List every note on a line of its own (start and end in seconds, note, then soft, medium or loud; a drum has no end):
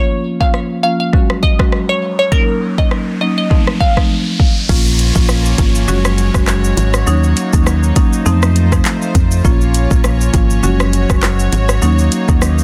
0.00 0.16 C#5 loud
0.00 riser medium
0.40 0.80 F3 medium
0.40 0.80 A#3 medium
0.40 0.80 C#4 medium
0.40 0.80 F4 medium
0.40 0.50 F5 medium
0.40 kick loud
0.54 cross-stick medium
0.83 1.11 F3 medium
0.83 1.11 A#3 medium
0.83 1.11 C#4 medium
0.83 1.11 F4 medium
0.83 0.96 F5 medium
1.00 1.10 F5 medium
1.13 1.27 F#3 medium
1.13 1.28 G#3 medium
1.13 1.28 C#4 medium
1.13 1.28 F#4 loud
1.13 kick medium
1.30 cross-stick medium
1.43 1.55 D#5 medium
1.43 kick medium
1.59 1.71 F#3 medium
1.59 1.71 G#3 medium
1.59 1.71 C#4 medium
1.59 1.71 F#4 medium
1.59 kick medium
1.59 cross-stick loud
1.72 cross-stick medium
1.89 1.99 C#5 medium
2.19 2.29 C#5 medium
2.32 2.46 F#3 medium
2.32 2.46 A#3 medium
2.32 2.46 C#4 medium
2.32 2.47 D#4 medium
2.32 2.54 A#4 loud
2.32 kick loud
2.78 3.18 F#3 medium
2.78 3.18 A#3 medium
2.78 3.18 C#4 medium
2.78 3.18 D#4 medium
2.78 2.88 D#5 medium
2.78 kick loud
2.91 cross-stick medium
3.21 3.48 F#3 medium
3.21 3.48 A#3 medium
3.21 3.49 C#4 medium
3.21 3.49 D#4 medium
3.21 3.33 D#5 medium
3.38 3.47 D#5 medium
3.50 3.65 F3 medium
3.50 3.65 A3 medium
3.50 3.65 C4 medium
3.50 3.65 D#4 loud
3.50 kick medium
3.67 cross-stick medium
3.80 3.93 F5 medium
3.80 kick medium
3.97 4.08 F3 medium
3.97 4.08 A3 medium
3.97 4.08 C4 medium
3.97 4.09 D#4 medium
3.97 kick medium
3.97 cross-stick medium
4.40 kick medium
4.69 5.12 A#1 loud
4.69 4.84 F3 medium
4.69 4.84 A#3 medium
4.69 5.87 A#3 medium
4.69 4.84 C#4 medium
4.69 7.05 C#4 medium
4.69 5.87 F4 medium
4.69 4.84 F4 loud
4.69 8.22 C#5 medium
4.69 kick loud
4.69 crash medium
4.69 downlifter medium
4.69 shaker medium
4.86 shaker soft
4.99 closed hi-hat medium
4.99 shaker medium
5.15 5.55 A#1 loud
5.15 5.55 F3 medium
5.15 5.55 A#3 medium
5.15 5.55 C#4 medium
5.15 5.56 F4 medium
5.15 kick loud
5.15 shaker medium
5.29 cross-stick medium
5.29 high bongo medium
5.29 shaker medium
5.46 shaker medium
5.58 5.85 G#1 loud
5.58 5.86 F3 medium
5.58 5.86 A#3 medium
5.58 5.86 C#4 medium
5.58 5.86 F4 medium
5.58 kick medium
5.58 closed hi-hat medium
5.58 high bongo medium
5.58 shaker medium
5.75 shaker medium
5.88 6.31 F#1 loud
5.88 6.03 F#3 medium
5.88 6.03 G#3 medium
5.88 7.06 G#3 medium
5.88 6.03 C#4 medium
5.88 8.23 F#4 medium
5.88 6.03 F#4 loud
5.88 shaker medium
6.05 cross-stick loud
6.05 shaker medium
6.18 closed hi-hat medium
6.18 shaker soft
6.34 6.73 F#1 medium
6.34 6.46 F#3 medium
6.34 6.46 G#3 medium
6.34 6.46 C#4 medium
6.34 6.46 F#4 medium
6.34 kick loud
6.34 cross-stick medium
6.34 shaker medium
6.47 cross-stick medium
6.47 clap medium
6.47 high bongo medium
6.47 shaker medium
6.64 shaker medium
6.77 7.04 G#1 loud
6.77 closed hi-hat medium
6.77 high bongo medium
6.77 low bongo medium
6.77 shaker medium
6.94 cross-stick loud
6.94 shaker medium
7.07 7.34 D#2 loud
7.07 7.21 F#3 medium
7.07 7.22 A#3 medium
7.07 8.25 A#3 medium
7.07 7.22 C#4 medium
7.07 9.42 D#4 medium
7.07 7.22 D#4 loud
7.07 shaker medium
7.24 shaker soft
7.37 closed hi-hat medium
7.37 shaker medium
7.53 7.92 D#2 medium
7.53 7.93 F#3 medium
7.53 7.93 A#3 medium
7.53 7.93 C#4 medium
7.53 7.93 D#4 medium
7.53 kick loud
7.53 shaker medium
7.66 cross-stick medium
7.66 high bongo medium
7.66 shaker medium
7.83 shaker medium
7.96 8.24 F#3 medium
7.96 8.24 A#3 medium
7.96 8.24 C#4 medium
7.96 8.24 D#4 medium
7.96 kick medium
7.96 closed hi-hat medium
7.96 high bongo medium
7.96 shaker medium
8.13 shaker medium
8.26 8.81 F2 loud
8.26 8.40 F3 medium
8.26 8.40 A3 medium
8.26 9.44 A3 medium
8.26 8.40 C4 medium
8.26 8.41 D#4 loud
8.26 10.61 F4 medium
8.26 9.44 C5 medium
8.26 shaker medium
8.43 cross-stick loud
8.43 shaker medium
8.56 closed hi-hat medium
8.56 shaker soft
8.72 8.83 F3 medium
8.72 8.84 A3 medium
8.72 8.84 C4 medium
8.72 8.84 D#4 medium
8.72 kick loud
8.72 cross-stick loud
8.72 shaker medium
8.85 clap medium
8.85 high bongo medium
8.85 shaker medium
9.02 shaker medium
9.15 9.42 F2 loud
9.15 kick loud
9.15 closed hi-hat medium
9.15 high bongo medium
9.15 low bongo medium
9.15 shaker medium
9.31 shaker medium
9.44 9.87 A#1 loud
9.44 9.59 F3 medium
9.44 9.59 A#3 medium
9.44 10.62 A#3 medium
9.44 11.80 C#4 medium
9.44 9.59 C#4 medium
9.44 9.59 F4 loud
9.44 12.64 C#5 medium
9.44 kick loud
9.44 shaker medium
9.61 shaker soft
9.74 closed hi-hat medium
9.74 shaker medium
9.91 10.30 A#1 loud
9.91 10.31 F3 medium
9.91 10.31 A#3 medium
9.91 10.31 C#4 medium
9.91 10.31 F4 medium
9.91 kick loud
9.91 shaker medium
10.04 cross-stick loud
10.04 high bongo medium
10.04 shaker medium
10.21 shaker medium
10.34 10.61 G#1 medium
10.34 10.61 F3 medium
10.34 10.61 A#3 medium
10.34 10.62 C#4 medium
10.34 10.62 F4 medium
10.34 kick medium
10.34 closed hi-hat medium
10.34 high bongo medium
10.34 shaker medium
10.50 shaker medium
10.63 11.06 F#1 loud
10.63 10.78 F#3 medium
10.63 10.78 G#3 medium
10.63 11.81 G#3 medium
10.63 10.78 C#4 medium
10.63 12.64 F#4 medium
10.63 10.78 F#4 loud
10.63 shaker medium
10.80 cross-stick loud
10.80 shaker medium
10.93 closed hi-hat medium
10.93 shaker soft
11.09 11.49 F#1 medium
11.09 11.21 F#3 medium
11.09 11.21 G#3 medium
11.09 11.21 C#4 medium
11.09 11.21 F#4 medium
11.09 kick medium
11.09 cross-stick loud
11.09 shaker medium
11.23 cross-stick loud
11.23 clap medium
11.23 high bongo medium
11.23 shaker medium
11.39 shaker medium
11.52 11.79 G#1 loud
11.52 closed hi-hat medium
11.52 high bongo medium
11.52 low bongo medium
11.52 shaker medium
11.69 cross-stick medium
11.69 shaker medium
11.82 12.09 D#2 loud
11.82 11.97 F#3 medium
11.82 11.97 A#3 medium
11.82 12.64 A#3 medium
11.82 11.97 C#4 medium
11.82 12.64 D#4 medium
11.82 11.97 D#4 loud
11.82 shaker medium
11.99 shaker soft
12.12 closed hi-hat medium
12.12 shaker medium
12.28 12.64 D#2 medium
12.28 12.64 F#3 medium
12.28 12.64 A#3 medium
12.28 12.64 C#4 medium
12.28 12.64 D#4 medium
12.28 kick loud
12.28 shaker medium
12.42 cross-stick medium
12.42 high bongo medium
12.42 shaker medium
12.58 shaker medium